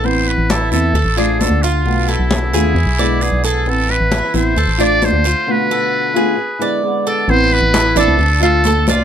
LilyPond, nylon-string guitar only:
\new Staff \with { instrumentName = "Nylon-string guitar" } { \time 4/4 \key a \minor \tempo 4 = 132 <e b c' e'>4. <b c' e'>8 r8 <a d' f'>8 <d a d' f'>4 | <b, d a b>4. <d a b f'>8 r8 <d gis b e'>8 <d gis b e'>4 | <e b c' e'>4. <b c' e'>8 r8 <a d' f'>8 <d a d' f'>4 | <b, d a b f'>4. <d a b f'>8 r8 <d gis b e'>8 <d gis b e'>4 |
<e b c' e'>4. <b c' e'>8 r8 <a d' f'>8 <d a d' f'>4 | }